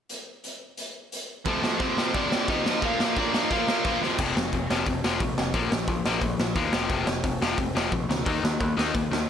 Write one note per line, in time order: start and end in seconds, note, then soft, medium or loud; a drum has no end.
0.09 closed hi-hat medium
0.44 closed hi-hat soft
0.77 closed hi-hat medium
1.12 closed hi-hat medium
1.45 1.63 F2 medium
1.45 1.62 C3 medium
1.45 1.63 F3 medium
1.45 1.79 A3 medium
1.45 1.81 A4 medium
1.45 kick loud
1.45 open hi-hat soft
1.63 1.79 F2 medium
1.63 1.80 C3 medium
1.63 1.81 F3 medium
1.63 snare loud
1.80 1.97 F2 medium
1.80 1.97 C3 medium
1.80 1.97 F3 medium
1.80 2.12 C4 medium
1.80 2.13 C5 medium
1.80 kick loud
1.80 open hi-hat soft
1.97 2.14 F2 medium
1.97 2.14 C3 medium
1.97 2.15 F3 medium
1.97 snare loud
2.14 2.31 F2 medium
2.14 2.31 C3 loud
2.14 2.31 F3 loud
2.14 2.46 D4 medium
2.14 2.50 D5 medium
2.14 kick loud
2.14 open hi-hat soft
2.31 2.48 F2 medium
2.31 2.48 C3 medium
2.31 2.49 F3 medium
2.31 snare loud
2.48 2.65 F2 medium
2.48 2.65 C3 medium
2.48 2.65 F3 medium
2.48 2.80 D#4 medium
2.48 2.85 D#5 loud
2.48 kick loud
2.48 open hi-hat soft
2.65 2.82 F2 medium
2.65 2.81 C3 medium
2.65 2.82 F3 medium
2.65 snare loud
2.82 3.00 A#2 medium
2.82 2.99 F3 medium
2.82 2.99 A#3 medium
2.82 3.14 F4 medium
2.82 3.16 F5 medium
2.82 kick loud
2.82 open hi-hat soft
3.00 3.16 A#2 medium
3.00 3.16 F3 medium
3.00 3.17 A#3 medium
3.00 snare loud
3.16 3.33 A#2 medium
3.16 3.33 F3 medium
3.16 3.32 A#3 medium
3.16 3.41 D4 medium
3.16 3.44 D5 medium
3.16 kick loud
3.16 open hi-hat soft
3.33 3.50 A#2 medium
3.33 3.51 F3 medium
3.33 3.51 A#3 medium
3.33 snare loud
3.42 3.50 D#4 medium
3.42 3.51 D#5 medium
3.51 3.68 A#2 medium
3.51 3.67 F3 medium
3.51 3.67 A#3 loud
3.51 3.98 F4 medium
3.51 3.99 F5 medium
3.51 kick loud
3.51 open hi-hat medium
3.68 3.83 A#2 medium
3.68 3.84 F3 medium
3.68 3.84 A#3 medium
3.68 snare loud
3.84 4.01 A#2 medium
3.84 4.01 F3 medium
3.84 4.01 A#3 medium
3.84 kick loud
3.84 open hi-hat soft
4.02 4.18 F2 medium
4.02 4.18 C3 medium
4.02 4.18 F3 loud
4.02 snare soft
4.18 4.32 F1 medium
4.18 4.35 F2 medium
4.18 4.35 C3 medium
4.18 4.36 F3 medium
4.18 kick loud
4.18 crash loud
4.36 4.49 F1 medium
4.36 4.52 F2 medium
4.36 4.52 C3 medium
4.36 snare loud
4.53 4.66 F1 medium
4.53 4.69 F2 medium
4.53 4.69 C3 medium
4.53 kick medium
4.53 open hi-hat medium
4.70 4.83 F1 medium
4.70 4.86 F2 medium
4.70 4.86 C3 medium
4.70 4.86 F3 medium
4.70 snare loud
4.86 5.00 F1 medium
4.86 5.02 F2 medium
4.86 5.03 C3 medium
4.86 kick loud
4.86 open hi-hat medium
5.04 5.17 F1 medium
5.04 5.20 F2 medium
5.04 5.20 C3 medium
5.04 5.20 F3 medium
5.04 snare loud
5.20 5.34 A#1 medium
5.20 5.36 F2 medium
5.20 5.36 C3 medium
5.20 kick loud
5.20 open hi-hat medium
5.38 5.51 F1 medium
5.38 5.53 F2 medium
5.38 5.54 C3 medium
5.38 snare medium
5.54 5.67 A#1 medium
5.54 5.70 A#2 medium
5.54 5.71 F3 medium
5.54 5.71 A#3 medium
5.54 kick loud
5.54 open hi-hat medium
5.72 5.85 A#1 medium
5.72 5.87 A#2 medium
5.72 5.87 F3 medium
5.72 snare loud
5.87 6.01 A#1 medium
5.87 6.04 A#2 medium
5.87 6.04 F3 medium
5.87 kick loud
5.87 open hi-hat soft
6.06 6.19 A#1 medium
6.06 6.21 A#2 medium
6.06 6.21 F3 medium
6.06 6.22 A#3 medium
6.06 snare loud
6.21 6.35 A#1 medium
6.21 6.38 A#2 medium
6.21 6.38 F3 medium
6.21 kick loud
6.21 open hi-hat medium
6.40 6.53 A#1 medium
6.40 6.55 A#2 medium
6.40 6.55 F3 medium
6.40 snare loud
6.56 6.69 D#2 medium
6.56 6.72 A#2 medium
6.56 6.72 F3 medium
6.56 6.72 A#3 medium
6.56 kick loud
6.56 open hi-hat medium
6.73 6.86 F1 medium
6.73 6.89 F2 medium
6.73 6.89 C3 loud
6.73 6.90 F3 medium
6.73 snare loud
6.90 7.03 F1 medium
6.90 7.06 F2 medium
6.90 7.06 C3 medium
6.90 7.07 F3 medium
6.90 kick loud
6.90 open hi-hat medium
7.07 7.21 F1 medium
7.07 7.23 F2 medium
7.07 7.23 C3 medium
7.07 snare loud
7.24 7.37 F1 medium
7.24 7.40 F2 medium
7.24 7.40 C3 medium
7.24 kick loud
7.24 open hi-hat medium
7.41 7.54 F1 medium
7.41 7.57 F2 medium
7.41 7.57 C3 medium
7.41 7.58 F3 medium
7.41 snare loud
7.58 7.71 F1 medium
7.58 7.74 F2 medium
7.58 7.74 C3 medium
7.58 kick loud
7.58 open hi-hat medium
7.75 7.88 F1 medium
7.75 7.90 F2 medium
7.75 7.91 C3 medium
7.75 7.92 F3 medium
7.75 snare loud
7.92 8.05 A#1 medium
7.92 8.08 F2 medium
7.92 8.08 C3 medium
7.92 kick loud
7.92 open hi-hat medium
8.09 8.22 D2 medium
8.09 8.25 F2 medium
8.09 8.25 C3 medium
8.09 snare loud
8.25 8.39 D#2 medium
8.25 8.42 D#3 medium
8.25 8.42 A#3 medium
8.25 8.43 D#4 loud
8.25 kick loud
8.25 open hi-hat medium
8.43 8.56 D#2 medium
8.43 8.59 D#3 medium
8.43 8.59 A#3 medium
8.43 snare loud
8.60 8.74 D#2 medium
8.60 8.76 D#3 medium
8.60 8.76 A#3 medium
8.60 kick loud
8.60 open hi-hat medium
8.77 8.90 D#2 medium
8.77 8.93 D#3 medium
8.77 8.93 A#3 medium
8.77 8.94 D#4 loud
8.77 snare loud
8.94 9.08 D#2 medium
8.94 9.10 D#3 medium
8.94 9.10 A#3 medium
8.94 kick loud
8.94 open hi-hat medium
9.11 9.24 D#2 medium
9.11 9.27 D#3 medium
9.11 9.27 A#3 medium
9.11 snare loud